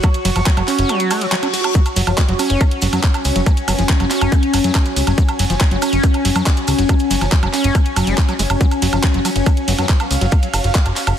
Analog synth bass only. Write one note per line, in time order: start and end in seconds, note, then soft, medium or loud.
0.25 0.31 F#1 loud
0.36 0.42 F#1 medium
0.57 0.63 F#1 medium
0.79 0.85 F#1 medium
1.96 2.03 F#1 loud
2.07 2.13 F#1 medium
2.29 2.35 F#1 medium
2.50 2.56 F#1 medium
2.82 2.88 F#1 medium
2.93 2.99 F#2 medium
3.25 3.31 C#2 loud
3.36 3.42 F#1 medium
3.68 3.74 F#1 medium
3.79 3.85 F#1 medium
4.00 4.06 F#1 medium
4.21 4.28 F#1 medium
4.54 4.60 F#1 medium
4.64 4.70 F#2 medium
4.96 5.03 C#2 medium
5.07 5.13 F#1 medium
5.39 5.45 F#1 loud
5.50 5.56 F#1 medium
5.71 5.78 F#1 medium
5.93 5.99 F#1 medium
6.25 6.31 F#1 medium
6.36 6.42 F#2 medium
6.68 6.74 C#2 loud
6.79 6.85 F#1 medium
7.11 7.17 F#1 loud
7.21 7.28 F#1 medium
7.43 7.49 F#1 medium
7.64 7.70 F#1 medium
7.96 8.03 F#1 medium
8.07 8.13 F#1 medium
8.39 8.45 F#1 loud
8.50 8.56 F#1 medium
8.82 8.88 F#1 medium
8.93 8.99 F#1 medium
9.14 9.20 F#1 medium
9.36 9.42 F#1 medium
9.68 9.74 F#1 medium
9.79 9.85 F#2 medium
10.11 10.17 C#2 medium
10.21 10.28 F#1 medium
10.54 10.60 F#1 medium
10.64 10.70 F#1 medium
10.86 10.92 F#1 medium
11.07 11.13 F#1 medium